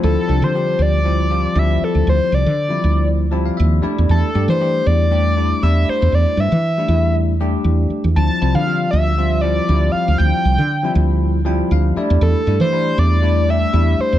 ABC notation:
X:1
M:4/4
L:1/16
Q:"Swing 16ths" 1/4=118
K:Dm
V:1 name="Analog synth lead"
A3 c3 d6 e2 A2 | c2 d6 z8 | A3 c3 d6 e2 c2 | d2 e6 z8 |
a3 f3 e4 d4 f2 | g6 z8 z2 | A3 c3 d4 e4 c2 |]
V:2 name="Tine electric piano"
z16 | z8 z2 a f e2 d2 | z16 | z16 |
z16 | z8 z2 g2 f2 d2 | z16 |]
V:3 name="Tine electric piano"
[F,G,CE]2 [F,G,CD]2 [F,G,CG]3 z [F,G,CE]2 [F,G,CF]2 [F,G,CE]4- | [F,G,CE]3 z2 [F,G,CE]4 z [F,G,CE]4 [G,A,DE]2- | [G,A,DE] z [G,A,DG]2 [G,A,DG]3 z [G,A,DG]2 [G,A,DE]2 [G,A,DE]4- | [G,A,DE]3 z2 [G,A,DE]4 z [G,A,DG]4- [G,A,DG] z |
[F,G,CE]2 [F,G,CE]2 [F,G,CF]3 z [F,G,CF]2 [F,G,CE]2 [F,G,CE]4- | [F,G,CE]3 z2 [F,G,CE]4 z [F,G,CE]4 [G,A,DE]2- | [G,A,DE] z [G,A,DE]2 [G,A,DE]3 z [G,A,DE]2 [G,A,DG]2 [G,A,DE]4 |]
V:4 name="Fretless electric bass" clef=bass
D,, z C,, D,3 D,,6 D,,2 z D,, | D,, z C,, D,3 D,,6 _E,,2 z =E,, | E,, z G,, E,3 E,,6 E,,2 z E,, | E,, z G,, E,3 E,,6 E,,2 z E,, |
D,, z C,, D,3 D,,6 D,,2 z D,, | D,, z C,, D,3 D,,6 D,,2 z E,, | E,, z G,, E,3 E,,6 E,,2 z E,, |]